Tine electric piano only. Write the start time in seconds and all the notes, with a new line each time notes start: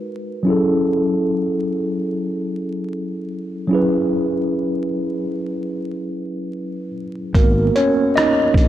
Already playing: G#3 D#4 F#4 A#4 B4
0.43 F#3 C#4 E4
0.49 G#4 A4
3.67 F#3 C#4 E4
3.73 G#4 B4
7.35 A#3 B3 F#4 A#4
7.76 C#4 C#5
8.16 D#4 D#5